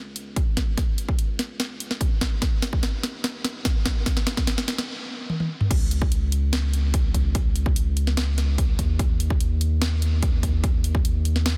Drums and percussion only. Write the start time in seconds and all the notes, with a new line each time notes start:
0.16 closed hi-hat
0.36 kick, closed hi-hat
0.57 kick, snare, closed hi-hat
0.78 kick, snare, closed hi-hat
0.98 closed hi-hat
1.09 kick
1.19 closed hi-hat
1.39 snare, closed hi-hat
1.60 snare, closed hi-hat
1.80 closed hi-hat
1.91 snare
2.01 kick, closed hi-hat
2.21 kick, snare, closed hi-hat
2.42 kick, snare, closed hi-hat
2.62 snare, closed hi-hat
2.73 kick
2.83 snare, closed hi-hat
3.03 snare, closed hi-hat
3.24 snare, closed hi-hat
3.44 snare, closed hi-hat
3.65 kick, snare, closed hi-hat
3.86 kick, snare, closed hi-hat
4.06 kick, snare, closed hi-hat
4.17 snare
4.27 snare, closed hi-hat
4.37 kick, snare
4.47 snare, closed hi-hat
4.58 snare
4.68 snare, closed hi-hat
4.78 snare
5.30 high tom
5.40 high tom
5.61 mid tom
5.71 kick, closed hi-hat, crash
5.91 closed hi-hat
6.02 kick
6.12 closed hi-hat
6.32 closed hi-hat
6.53 snare, closed hi-hat
6.74 closed hi-hat
6.94 kick, closed hi-hat
7.14 kick, closed hi-hat
7.35 kick, closed hi-hat
7.56 closed hi-hat
7.66 kick
7.76 closed hi-hat
7.97 closed hi-hat
8.07 snare
8.17 snare, closed hi-hat
8.38 snare, closed hi-hat
8.58 kick, closed hi-hat
8.79 kick, closed hi-hat
8.99 kick, closed hi-hat
9.20 closed hi-hat
9.30 kick
9.40 closed hi-hat
9.61 closed hi-hat
9.82 snare, closed hi-hat
10.02 closed hi-hat
10.23 kick, closed hi-hat
10.43 kick, closed hi-hat
10.64 kick, closed hi-hat
10.84 closed hi-hat
10.95 kick
11.05 closed hi-hat
11.25 closed hi-hat
11.36 snare
11.46 snare, closed hi-hat